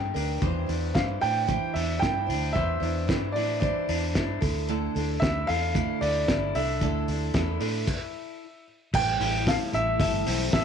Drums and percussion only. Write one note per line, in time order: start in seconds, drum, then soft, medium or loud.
0.16 open hi-hat medium
0.42 kick loud
0.42 closed hi-hat medium
0.69 open hi-hat soft
0.95 kick loud
0.95 snare loud
0.95 closed hi-hat medium
1.23 open hi-hat medium
1.49 kick loud
1.49 closed hi-hat medium
1.76 open hi-hat medium
2.02 kick loud
2.02 snare loud
2.02 closed hi-hat medium
2.30 open hi-hat medium
2.56 kick loud
2.56 closed hi-hat medium
2.83 open hi-hat medium
3.09 kick loud
3.09 snare loud
3.09 closed hi-hat medium
3.36 open hi-hat medium
3.62 kick loud
3.62 closed hi-hat medium
3.89 open hi-hat medium
4.15 kick loud
4.15 snare loud
4.15 closed hi-hat medium
4.42 kick loud
4.42 open hi-hat medium
4.69 closed hi-hat medium
4.96 open hi-hat medium
5.22 kick loud
5.22 snare loud
5.22 closed hi-hat medium
5.49 open hi-hat medium
5.75 kick loud
5.75 closed hi-hat medium
6.02 open hi-hat medium
6.28 kick loud
6.28 snare loud
6.28 closed hi-hat medium
6.55 open hi-hat medium
6.81 kick medium
6.81 closed hi-hat medium
7.08 open hi-hat medium
7.34 kick loud
7.34 snare loud
7.34 closed hi-hat medium
7.61 open hi-hat medium
7.87 kick loud
7.87 crash medium
8.94 kick loud
8.94 crash loud
9.21 hi-hat pedal medium
9.21 open hi-hat medium
9.47 kick loud
9.47 snare loud
9.47 hi-hat pedal medium
9.47 open hi-hat medium
9.73 hi-hat pedal medium
9.73 open hi-hat medium
10.00 kick loud
10.00 hi-hat pedal medium
10.00 open hi-hat medium
10.27 hi-hat pedal medium
10.27 open hi-hat medium
10.53 kick loud
10.53 snare loud
10.53 hi-hat pedal medium
10.53 open hi-hat medium